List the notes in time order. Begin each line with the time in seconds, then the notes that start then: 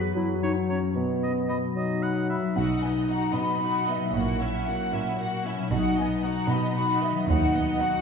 Already playing: F#2 F#3 B3 F#4 B4
0.15 F#2 F#3 E4
0.41 F#3 D#4 C#5 A#5
0.68 C#4 A#4 C#5 A#5
0.95 B2 B3
1.22 B3 D#5 B5
1.48 F#3 D#5 B5
1.76 F#3 D#4 D#5
2.03 B4 F#5 B5
2.29 E5 B5
2.38 B2
2.43 F#3
2.47 D#4
2.52 B4
2.56 B1 B2 D#4 F#4 F#5
2.82 B3 D#4 D#5 G#5
3.08 D#4 F#4 F#5 A#5
3.34 B2 B3 D#4 D#5 B5
3.61 D#4 F#4 F#5
3.87 B3 D#4 D#5 E5
3.96 A#2
4.01 F#3
4.05 E4
4.10 A#1 A#3 C#5
4.14 A#2 F#4 F#5
4.41 C#4 E4 E5
4.67 A#3 F#4 F#5
4.92 A#2 C#4 E4 E5
5.18 A#3 F#4 F#5
5.45 C#4 E4 E5
5.54 B2
5.58 F#3
5.63 D#4
5.67 B1 D#4 F#4 B4 F#5
5.72 B2 F#5
5.96 B3 D#4 D#5 G#5
6.22 D#4 F#4 F#5 A#5
6.50 B2 B3 D#4 D#5 B5
6.75 D#4 F#4 F#5
7.01 B3 D#4 D#5 E5
7.11 D#3
7.16 F#3
7.20 D#4
7.24 D#2 D#4 B4
7.28 D#2 F#4 F#5
7.53 B3 D#4 D#5
7.80 D#4 F#4 F#5